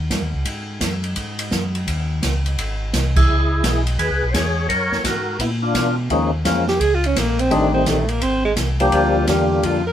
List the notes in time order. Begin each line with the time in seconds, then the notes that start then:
0.10 G2, kick, snare, hi-hat pedal, ride
0.22 D#2
0.34 C#2
0.45 G#2, kick, ride
0.81 F#2, kick, snare, hi-hat pedal, ride
1.04 ride
1.16 G#2, kick, ride
1.39 ride
1.51 F#2, kick, snare, hi-hat pedal
1.75 ride
1.87 D#2, kick, ride
2.22 C#2, kick, snare, hi-hat pedal, ride
2.46 ride
2.58 G#1, kick, ride
2.93 C2, kick, snare, hi-hat pedal, ride
3.16 E4 G#4, kick, crash
3.29 C#2
3.64 B1, kick, snare, hi-hat pedal, ride
3.87 ride
3.99 D#2 G#4 B4, kick, ride
4.10 C#2
4.23 B1
4.29 C5 C#5
4.34 E2 G#4, kick, snare, hi-hat pedal, ride
4.69 F#2 A#4 C#5, kick, ride
4.91 F#2, snare
5.04 G#2 F#4 A#4, kick, snare, hi-hat pedal, ride
5.39 A#2 B3 E4, kick, ride
5.62 D4 F4
5.75 B2, kick, snare, hi-hat pedal, ride
6.10 D#2 F3 G#3 A#3 C#4 D#4, kick, ride
6.45 F2 F3 G#3 A#3 C#4 F4, kick, snare, hi-hat pedal, ride
6.68 G4, snare
6.80 C#2 G#4, kick, ride
6.95 F4
7.04 C#4, ride
7.16 A#1 A#3, kick, snare, hi-hat pedal, ride
7.39 C4, ride
7.51 A1 D#3 G3 A3 C4 D4 D#4, kick, ride
7.74 C4
7.86 A#1 A3, kick, snare, hi-hat pedal, ride
8.09 A#3, ride
8.21 G#1 C4, kick, ride
8.45 G#3
8.56 C2, kick, snare, hi-hat pedal, ride
8.80 F3 G3 A#3 D4 G4, ride
8.92 D2 F4, kick, ride
9.27 E2 D3 G3 A#3 D4 F4 G4, kick, snare, hi-hat pedal, ride
9.63 F2 F4, kick, ride
9.87 A#4